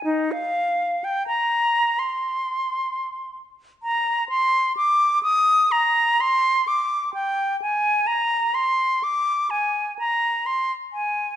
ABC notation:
X:1
M:4/4
L:1/16
Q:1/4=64
K:Cm
V:1 name="Flute"
E f3 g b3 c'6 z2 | b2 c'2 d'2 e'2 b2 c'2 d'2 g2 | a2 b2 c'2 d'2 a2 b2 c'2 a2 |]